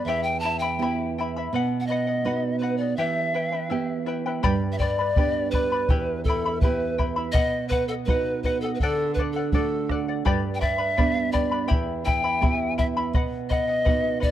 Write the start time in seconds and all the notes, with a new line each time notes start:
0.05 E2 G4 E5 G5 B5
0.09 E4 E5
0.23 G5
0.40 G5 A5
0.44 E4 E5 B5
0.59 E5 G5 B5
0.64 E4
0.79 B3 E4 G4 E5 G5 B5
1.18 E4 E5 G5 B5
1.37 E4 E5 B5
1.53 B2 B4 D#5 F#5
1.80 F#5
1.87 B4 D#5
1.91 D#5 F#5
2.07 D#5 F#5
2.25 B3 D#4 F#4 B4 D#5 F#5
2.59 B4 D#5
2.63 F#5
2.77 D5 F#5
2.82 D#5
2.96 E3 E4 G4 B4 E5 G5
3.34 E4 B4 E5 G5
3.52 E4 B4 G5
3.70 B3 E4 G4 B4 E5 G5
4.06 E4 B4 E5 G5
4.26 E4 B4 G5
4.43 G2 G4 B4 D5 G5 B5, bombo low
4.72 E5
4.78 B4 D5 G5 B5, bombo low
4.99 B4 D5 B5
5.16 B3 D4 G4 B4 D5 G5 B5, bombo low
5.51 B4 D5 G5 B5, bombo low
5.72 B4 D5 B5
5.89 E2 E4 G4 E5 G5 B5, bombo low
6.24 A4 G5, bombo low
6.28 E4 E5 B5
6.46 E4 E5 B5
6.61 B3 E4 G4 B4 E5 G5 B5, bombo low
6.98 E4 E5 G5 B5, bombo low
7.16 E4 E5 B5
7.32 B2 B4 D#5 F#5, bombo low
7.68 B4 D#5 F#5, bombo low
7.88 A4 D#5 F#5
8.05 B3 D#4 F#4 B4 D#5, bombo low
8.10 F#5
8.43 B4 D#5 F#5, bombo low
8.61 A4 F#5
8.66 D#5
8.75 B4
8.80 D3 A4 D5 F#5, bombo low
9.14 B4, bombo low
9.18 A4 D5 F#5
9.33 A4 F#5
9.38 D5
9.52 A3 D4 F#4 A4 D5 F#5, bombo low
9.89 A4 D5 F#5, bombo rim, bombo low
10.08 D5 F#5
10.25 G2 G4 B4 D5 G5 B5, bombo low
10.54 G5
10.60 B4 D5 E5 G5 B5, bombo low
10.78 B4 D5 B5
10.97 B3 D4 G4 B4 D5 G5 B5, bombo low
11.32 B4 D5 G5 B5, bombo low
11.51 B4 D5 B5
11.68 E2 E4 G4 E5 G5 B5, bombo low
12.05 E4 E5 G5 B5, bombo low
12.24 E4 E5 B5
12.41 B3 E4 G4 E5 G5 B5, bombo low
12.78 E4 E5 G5 B5, bombo low
12.97 E4 E5 B5
13.13 B2 B4 D#5 F#5, bombo low
13.49 B4 D#5 F#5, bombo low
13.68 D#5 F#5
13.85 B3 D#4 F#4 B4 D#5 F#5, bombo low
14.20 B4 D5 D#5 F#5, bombo low